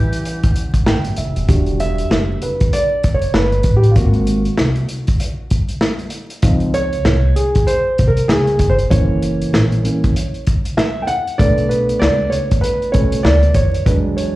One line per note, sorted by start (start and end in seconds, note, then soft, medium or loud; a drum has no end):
0.00 0.82 E3 medium
0.00 1.43 E3 medium
0.00 1.44 G3 medium
0.00 1.45 C#4 medium
0.00 0.83 G4 loud
0.00 1.50 F#5 medium
0.13 closed hi-hat medium
0.25 closed hi-hat medium
0.43 kick loud
0.43 closed hi-hat medium
0.56 closed hi-hat medium
0.74 kick medium
0.74 closed hi-hat medium
0.86 1.03 G1 medium
0.86 1.16 G5 medium
0.86 snare loud
1.05 closed hi-hat soft
1.16 1.33 F#1 medium
1.16 1.47 E5 medium
1.16 closed hi-hat medium
1.36 1.47 F1 medium
1.36 closed hi-hat soft
1.48 1.99 E1 medium
1.48 3.92 G3 medium
1.48 3.92 D4 soft
1.48 3.93 F#4 medium
1.48 kick loud
1.48 closed hi-hat medium
1.66 closed hi-hat soft
1.80 2.44 E5 loud
1.80 closed hi-hat medium
1.98 closed hi-hat soft
2.10 2.36 F#1 medium
2.10 snare loud
2.42 2.74 B4 medium
2.42 closed hi-hat medium
2.60 kick loud
2.60 closed hi-hat soft
2.73 3.15 D5 medium
2.73 closed hi-hat medium
3.04 3.29 F#1 medium
3.04 kick medium
3.04 closed hi-hat medium
3.14 3.35 C#5 medium
3.22 closed hi-hat soft
3.34 3.60 G1 medium
3.34 3.73 B4 medium
3.34 snare loud
3.52 closed hi-hat soft
3.63 3.90 A1 medium
3.63 kick medium
3.63 closed hi-hat medium
3.76 3.92 G4 medium
3.83 closed hi-hat soft
3.91 3.96 F4 medium
3.96 4.47 G#1 medium
3.96 4.40 A#3 medium
3.96 4.40 C4 soft
3.96 5.48 F#4 medium
3.96 kick loud
3.96 closed hi-hat medium
4.14 closed hi-hat soft
4.27 closed hi-hat medium
4.45 closed hi-hat soft
4.57 4.83 C2 medium
4.57 snare loud
4.76 closed hi-hat soft
4.89 closed hi-hat medium
5.07 kick medium
5.07 closed hi-hat soft
5.20 closed hi-hat medium
5.50 kick medium
5.50 closed hi-hat medium
5.69 closed hi-hat soft
5.81 snare loud
5.99 closed hi-hat soft
6.10 closed hi-hat medium
6.30 closed hi-hat soft
6.42 6.94 C#2 medium
6.42 6.87 F3 medium
6.42 6.87 C4 soft
6.42 6.87 D#4 medium
6.42 kick loud
6.42 closed hi-hat medium
6.60 closed hi-hat soft
6.74 7.38 C#5 loud
6.74 closed hi-hat medium
6.93 closed hi-hat soft
7.05 7.31 C2 loud
7.05 snare loud
7.36 7.68 G#4 medium
7.36 closed hi-hat medium
7.55 kick medium
7.55 closed hi-hat medium
7.67 8.05 C5 medium
7.67 closed hi-hat medium
7.98 8.24 C2 medium
7.98 kick medium
7.98 closed hi-hat medium
8.08 8.29 A#4 medium
8.17 closed hi-hat medium
8.28 8.54 C#2 medium
8.28 8.67 G#4 medium
8.28 snare loud
8.47 closed hi-hat soft
8.59 8.85 G1 medium
8.59 kick medium
8.59 closed hi-hat medium
8.69 8.74 C5 medium
8.79 closed hi-hat soft
8.90 9.42 F#1 medium
8.90 9.79 E3 medium
8.90 9.80 A#3 medium
8.90 9.80 C#4 medium
8.90 10.41 C#5 medium
8.90 kick loud
8.90 closed hi-hat medium
9.22 closed hi-hat medium
9.42 closed hi-hat medium
9.53 9.78 A#1 medium
9.53 snare loud
9.72 closed hi-hat soft
9.84 10.12 E3 soft
9.84 10.12 A#3 soft
9.84 10.12 C#4 soft
9.84 closed hi-hat medium
10.04 kick medium
10.04 closed hi-hat medium
10.16 closed hi-hat medium
10.34 closed hi-hat soft
10.47 kick medium
10.47 closed hi-hat medium
10.65 closed hi-hat medium
10.77 11.01 E5 medium
10.77 snare loud
11.02 11.08 G5 medium
11.07 11.36 F#5 loud
11.07 closed hi-hat medium
11.27 closed hi-hat soft
11.38 11.90 B1 loud
11.38 12.92 A3 soft
11.38 13.82 B3 medium
11.38 13.82 D4 medium
11.38 11.70 D5 medium
11.38 kick loud
11.38 closed hi-hat medium
11.58 closed hi-hat soft
11.69 12.01 B4 medium
11.69 closed hi-hat medium
11.89 closed hi-hat soft
12.00 12.26 C#2 medium
12.00 12.32 D5 loud
12.00 snare loud
12.30 12.59 C#5 medium
12.30 closed hi-hat medium
12.51 kick medium
12.51 closed hi-hat medium
12.61 12.94 B4 medium
12.61 closed hi-hat medium
12.82 closed hi-hat soft
12.92 13.20 C#2 medium
12.92 13.21 B2 medium
12.92 13.21 A3 soft
12.92 13.21 C#4 medium
12.92 13.25 C#5 medium
12.92 kick medium
12.92 closed hi-hat medium
13.12 closed hi-hat medium
13.23 13.50 D2 medium
13.23 13.52 D5 loud
13.23 snare loud
13.43 closed hi-hat soft
13.54 13.80 F2 loud
13.54 13.87 C#5 medium
13.54 kick medium
13.54 closed hi-hat medium
13.74 closed hi-hat soft
13.86 14.36 E2 medium
13.86 14.30 F#3 medium
13.86 14.30 G#3 soft
13.86 14.30 D4 medium
13.86 13.93 B4 medium
13.86 kick loud
13.86 closed hi-hat medium
14.17 14.36 C#5 medium
14.17 closed hi-hat medium